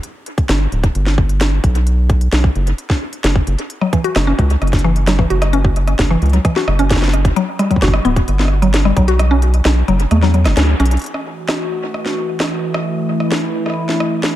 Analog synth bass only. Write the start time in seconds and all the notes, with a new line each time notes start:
0.49 G1
0.72 D1
0.95 G1
1.64 B1
2.33 B1
2.56 F#1
3.24 F#1
3.47 F#1
4.16 F#1
4.39 C#2
4.62 F#1
5.30 F#1
5.99 F#1
6.22 C#2
6.68 F#1
7.82 G1
8.05 D1
8.28 G1
8.96 B1
9.65 B1
9.88 F#1
10.11 E2
10.45 F#1
10.57 D2
10.80 B1